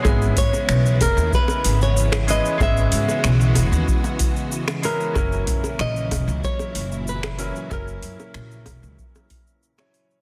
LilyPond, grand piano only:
\new Staff \with { instrumentName = "Grand piano" } { \time 4/4 \key cis \dorian \tempo 4 = 94 <gis b cis' e'>2.~ <gis b cis' e'>8 <gis cis' e' b'>8 | <gis cis' e' b'>2.~ <gis cis' e' b'>8 <gis cis' e' b'>8 | <fis cis' e' ais'>2.~ <fis cis' e' ais'>8 <fis cis' e' ais'>8 | <fis cis' e' ais'>2.~ <fis cis' e' ais'>16 <fis cis' e' cis''>8. | }